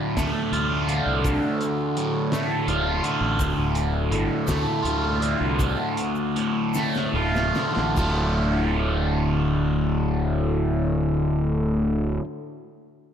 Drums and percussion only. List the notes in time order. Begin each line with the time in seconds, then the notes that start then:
0.17 kick, snare, closed hi-hat, shaker
0.53 closed hi-hat
0.89 closed hi-hat
1.24 kick, closed hi-hat, shaker
1.61 closed hi-hat, shaker
1.97 closed hi-hat
2.32 snare, closed hi-hat, shaker
2.68 closed hi-hat
3.04 closed hi-hat
3.39 kick, closed hi-hat, shaker
3.75 closed hi-hat, shaker
4.12 closed hi-hat
4.47 kick, snare, closed hi-hat, shaker
4.85 closed hi-hat
5.22 closed hi-hat
5.59 kick, closed hi-hat, shaker
5.97 closed hi-hat
6.15 shaker
6.36 closed hi-hat
6.74 snare, shaker
6.94 snare, shaker
7.35 snare, shaker
7.55 snare, shaker
7.76 snare
7.97 kick, crash, shaker